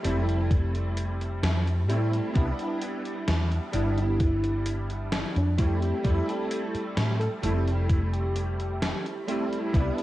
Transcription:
0.00 0.03 G3 medium
0.00 1.83 G3 medium
0.00 0.03 A3 medium
0.00 1.83 A3 medium
0.00 0.05 C4 medium
0.00 0.06 E4 loud
0.04 1.42 F1 loud
0.04 1.84 C4 medium
0.04 1.84 E4 medium
0.04 closed hi-hat medium
0.29 closed hi-hat soft
0.51 kick loud
0.51 closed hi-hat medium
0.75 closed hi-hat soft
0.97 closed hi-hat medium
1.21 closed hi-hat soft
1.43 1.89 F2 medium
1.43 snare loud
1.43 closed hi-hat medium
1.67 closed hi-hat soft
1.88 2.19 A2 medium
1.88 2.29 G3 medium
1.88 2.30 A3 medium
1.88 2.30 C4 medium
1.88 2.30 E4 medium
1.88 closed hi-hat medium
2.13 closed hi-hat soft
2.33 2.50 C2 medium
2.33 3.68 G3 medium
2.33 3.68 B3 medium
2.33 3.68 D4 medium
2.33 3.69 E4 loud
2.33 kick loud
2.33 closed hi-hat medium
2.59 closed hi-hat soft
2.82 closed hi-hat medium
3.05 closed hi-hat soft
3.28 3.58 E2 medium
3.28 snare loud
3.28 closed hi-hat medium
3.52 closed hi-hat soft
3.72 5.22 G1 medium
3.72 5.52 G3 medium
3.72 5.53 B3 medium
3.72 5.53 D4 medium
3.72 5.54 E4 medium
3.72 closed hi-hat medium
3.98 4.66 E4 medium
3.98 closed hi-hat soft
4.20 kick loud
4.20 closed hi-hat medium
4.44 closed hi-hat soft
4.66 closed hi-hat medium
4.90 closed hi-hat soft
5.12 snare loud
5.12 closed hi-hat medium
5.36 5.91 F2 loud
5.36 5.54 D4 medium
5.36 closed hi-hat soft
5.58 5.99 G3 medium
5.58 5.99 A3 medium
5.58 5.99 C4 medium
5.58 6.00 E4 medium
5.58 6.27 G4 medium
5.58 kick loud
5.58 closed hi-hat medium
5.82 closed hi-hat soft
6.03 6.20 F2 medium
6.03 7.37 G3 medium
6.03 7.38 A3 medium
6.03 7.38 C4 medium
6.03 7.39 E4 loud
6.03 kick loud
6.03 closed hi-hat medium
6.28 6.83 A4 loud
6.28 closed hi-hat soft
6.51 closed hi-hat medium
6.74 muted fretless electric bass stroke soft
6.74 closed hi-hat soft
6.97 7.27 A2 medium
6.97 snare loud
6.97 closed hi-hat medium
7.19 7.34 A4 medium
7.19 closed hi-hat soft
7.42 8.91 F1 loud
7.42 9.22 G3 medium
7.42 9.22 A3 medium
7.42 9.23 C4 medium
7.42 9.23 E4 medium
7.42 7.58 A4 medium
7.42 closed hi-hat medium
7.68 closed hi-hat soft
7.90 kick loud
7.90 closed hi-hat medium
8.12 9.42 G4 loud
8.12 closed hi-hat soft
8.36 closed hi-hat medium
8.60 closed hi-hat soft
8.82 snare loud
8.82 closed hi-hat medium
9.06 closed hi-hat soft
9.27 9.68 G3 medium
9.27 9.68 A3 medium
9.27 9.69 C4 medium
9.27 9.69 E4 medium
9.27 closed hi-hat medium
9.53 closed hi-hat soft
9.73 9.89 C2 medium
9.73 10.03 G3 medium
9.73 10.03 B3 medium
9.73 10.03 D4 medium
9.73 10.03 E4 loud
9.73 kick loud
9.73 closed hi-hat medium
9.98 closed hi-hat soft

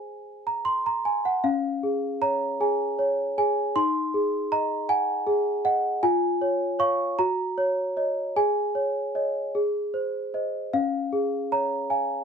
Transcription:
0.00 1.38 G#4 soft
0.00 1.39 C5 soft
0.00 0.46 G#5 medium
0.47 0.66 A#5 medium
0.65 0.85 C6 medium
0.86 1.05 A#5 medium
1.05 1.25 G#5 medium
1.25 1.45 F#5 medium
1.44 3.72 C#4 medium
1.44 2.22 F5 medium
1.83 2.45 G#4 soft
2.22 2.84 C#5 soft
2.22 2.60 A#5 medium
2.60 3.22 G#4 soft
2.60 3.37 G#5 medium
2.99 3.60 C#5 soft
3.38 3.76 G#4 soft
3.38 3.76 G#5 medium
3.76 5.99 D#4 medium
3.76 4.51 C6 medium
4.14 4.74 G#4 soft
4.52 5.12 D#5 soft
4.52 4.89 A#5 medium
4.89 5.49 F#5 medium
4.89 5.65 G#5 medium
5.27 5.87 G#4 medium
5.65 6.03 D#5 soft
5.65 6.03 F#5 medium
6.03 7.15 F4 medium
6.03 6.80 G#5 medium
6.41 6.78 C#5 medium
6.79 7.14 C#5 soft
6.79 7.14 F5 medium
6.79 7.18 C#6 medium
7.19 8.33 F#4 medium
7.19 8.36 A#5 medium
7.58 7.96 C#5 medium
7.97 8.32 C#5 soft
7.97 8.32 D#5 soft
8.36 9.51 G#4 medium
8.36 9.55 G#5 medium
8.75 9.14 C#5 soft
9.15 9.50 C#5 soft
9.15 9.51 D#5 soft
9.55 10.70 G#4 soft
9.94 10.33 C5 soft
10.34 10.70 C5 soft
10.34 10.70 D#5 soft
10.73 12.24 C#4 medium
10.73 11.52 F5 medium
11.13 11.75 G#4 soft
11.52 12.14 C#5 soft
11.52 11.91 A#5 medium
11.90 12.24 F5 soft
11.90 12.24 G#5 medium

